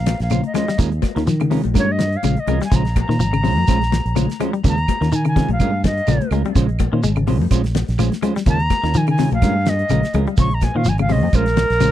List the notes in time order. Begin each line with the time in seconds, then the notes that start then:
Already playing: A#1 F5
0.06 muted clean electric guitar stroke, snare, closed hi-hat, high conga, shekere
0.20 A#1 F5, snare, closed hi-hat
0.30 C#3 C#4 F4 C5, muted clean electric guitar stroke, closed hi-hat, high conga, claves, shekere
0.44 D#5, muted clean electric guitar stroke, closed hi-hat
0.54 G#3 C#4 F4 C5 D#5, snare, closed hi-hat, low conga, claves, shekere
0.68 G3, muted clean electric guitar stroke, snare, closed hi-hat
0.78 D#2 G#3 C#4 F4 A#4, muted clean electric guitar stroke, kick, closed hi-hat, shekere
0.92 muted clean electric guitar stroke, closed hi-hat
1.02 muted clean electric guitar stroke, kick, snare, closed hi-hat, high conga, claves, shekere
1.15 D#2 D#3 C#4 F4 A#4, snare, closed hi-hat
1.25 D#3 F3, muted clean electric guitar stroke, snare, closed hi-hat, shekere
1.40 C#3, closed hi-hat, high conga, claves
1.50 C3 G#3 C#4 F4 A#4, open hi-hat, low conga, shekere
1.64 A#1, muted clean electric guitar stroke, closed hi-hat, high conga
1.74 G2 G#3 C#4 F4 A#4, kick, snare, closed hi-hat, high conga, low conga, claves, shekere
1.78 C#5
1.89 D#5, muted clean electric guitar stroke
1.99 muted clean electric guitar stroke, snare, closed hi-hat, high conga, shekere
2.12 closed hi-hat
2.17 F5
2.23 A#1 C#3 G#3 C#4 F4, muted clean electric guitar stroke, closed hi-hat, high conga, claves, shekere
2.37 D#5, muted clean electric guitar stroke, closed hi-hat
2.47 C2 G#3 C#4 F4 A#4, closed hi-hat, low conga, claves, shekere
2.61 G3 G#5, muted clean electric guitar stroke, snare, closed hi-hat
2.72 A#1 C#3 G#3 C#4 F4 C5 A#5, kick, snare, closed hi-hat, shekere
2.85 muted clean electric guitar stroke, snare, closed hi-hat
2.96 muted clean electric guitar stroke, kick, closed hi-hat, high conga, claves, shekere
3.00 A#5
3.09 A#2 D#3 F4 C5, muted clean electric guitar stroke, snare
3.19 G#1 F3, muted clean electric guitar stroke, closed hi-hat, shekere
3.33 C#3, closed hi-hat, claves
3.43 C3 G#3 C#4 F4 C5, open hi-hat, low conga, shekere
3.57 F2, muted clean electric guitar stroke, high conga
3.68 A#1 G#3 C#4 F4 C5, kick, snare, closed hi-hat, high conga, claves, shekere
3.81 muted clean electric guitar stroke, snare, closed hi-hat
3.92 muted clean electric guitar stroke, snare, closed hi-hat, high conga, shekere
4.05 A#1, closed hi-hat
4.15 C#3 G#3 C#4 F4 C5, closed hi-hat, high conga, claves, shekere
4.29 muted clean electric guitar stroke, snare, closed hi-hat
4.40 G#3 C#4 F4 C5, closed hi-hat, low conga, claves, shekere
4.53 G3, muted clean electric guitar stroke, closed hi-hat
4.64 D#2 C#3 G#3 C#4 F4 A#4, kick, closed hi-hat, shekere
4.69 A#5
4.78 muted clean electric guitar stroke, closed hi-hat
4.88 muted clean electric guitar stroke, kick, closed hi-hat, high conga, claves, shekere
5.01 D#2 D#3 C#4 F4 A#4, snare, closed hi-hat
5.12 D#3 G#5, muted clean electric guitar stroke, closed hi-hat, shekere
5.25 C#3 G#5, closed hi-hat, claves
5.36 C3 G#3 C#4 F4 A#4, kick, snare, closed hi-hat, low conga, shekere
5.49 A#1, muted clean electric guitar stroke, closed hi-hat, high conga
5.53 F5
5.60 G2 G#3 C#4 F4 A#4, kick, closed hi-hat, claves, shekere
5.73 muted clean electric guitar stroke
5.84 D#5, muted clean electric guitar stroke, kick, snare, closed hi-hat, high conga, shekere
5.98 closed hi-hat
6.07 A#1 C#3 G#3 C#4 F4 A#4, closed hi-hat, high conga, claves, shekere
6.20 muted clean electric guitar stroke, closed hi-hat, high conga
6.31 C#2 G#3 C#4 F4 A#4, closed hi-hat, claves, shekere
6.45 G3, muted clean electric guitar stroke, closed hi-hat, low conga
6.55 A#1 C#3 G#3 C#4 F4 C5, kick, closed hi-hat, shekere
6.69 muted clean electric guitar stroke, closed hi-hat
6.79 muted clean electric guitar stroke, kick, closed hi-hat, high conga, claves, shekere
6.92 A#2 D#3 C#4 F4 C5
7.03 G#1 G#3, muted clean electric guitar stroke, closed hi-hat, shekere
7.16 C#3, closed hi-hat, claves
7.27 C3 G#3 C#4 F4 C5, open hi-hat, low conga, shekere
7.40 F2, muted clean electric guitar stroke, high conga
7.51 A#1 G#3 C#4 F4 C5, kick, closed hi-hat, low conga, claves, shekere
7.64 muted clean electric guitar stroke, snare, closed hi-hat
7.75 muted clean electric guitar stroke, snare, closed hi-hat, high conga, shekere
7.88 A#1, snare, closed hi-hat
7.98 F3 G#3 C#4 F4 C5, closed hi-hat, high conga, claves, shekere
8.12 muted clean electric guitar stroke, snare, closed hi-hat
8.22 G#3 C#4 F4 C5, closed hi-hat, low conga, claves, shekere
8.36 G3, muted clean electric guitar stroke, snare, closed hi-hat
8.46 D#2 C#3 G#3 C#4 F4 A#4 A#5, kick, closed hi-hat, shekere
8.60 muted clean electric guitar stroke, closed hi-hat
8.70 muted clean electric guitar stroke, kick, snare, closed hi-hat, high conga, claves, shekere
8.83 D#2 D#3 C#4 F4 A#4, snare, closed hi-hat
8.94 D#3 F3 G#5, muted clean electric guitar stroke, closed hi-hat, shekere
9.07 C#3 G#5, closed hi-hat, claves
9.18 C3 G#3 C#4 F4 A#4, snare, open hi-hat, low conga, shekere
9.31 A#1 F5, muted clean electric guitar stroke, closed hi-hat, high conga
9.42 G2 G#3 C#4 F4 A#4, kick, snare, closed hi-hat, high conga, claves, shekere
9.56 muted clean electric guitar stroke
9.66 D#5, muted clean electric guitar stroke, snare, closed hi-hat, high conga, shekere
9.79 closed hi-hat
9.89 A#1 C#3 G#3 C#4 F4 A#4, closed hi-hat, high conga, claves, shekere
10.03 muted clean electric guitar stroke, snare, closed hi-hat
10.13 C#2 G#3 C#4 F4 A#4, closed hi-hat, low conga, claves, shekere
10.27 G3, muted clean electric guitar stroke, closed hi-hat
10.37 A#1 C#3 G#3 C#4 F4 C5 C#6, kick, closed hi-hat, shekere
10.51 A#5, muted clean electric guitar stroke, closed hi-hat
10.61 G#5, muted clean electric guitar stroke, kick, snare, closed hi-hat, high conga, claves, shekere
10.75 A#2 D#3 C#4 F4 C5 F5
10.85 G#1 F3, muted clean electric guitar stroke, closed hi-hat, shekere
10.89 G#5
10.98 C#3 F5, closed hi-hat, high conga, claves
11.09 C3 G#3 C#4 C5 D#5, muted clean electric guitar stroke, open hi-hat, low conga, shekere
11.23 F2, high conga
11.33 A#1 G#3 C#4 F4 A#4 C5, kick, closed hi-hat, claves, shekere
11.46 muted clean electric guitar stroke, snare, closed hi-hat
11.56 muted clean electric guitar stroke, snare, closed hi-hat, high conga, shekere
11.70 A#1, snare, closed hi-hat
11.80 C#3 G#3 C#4 F4 C5, closed hi-hat, high conga, claves, shekere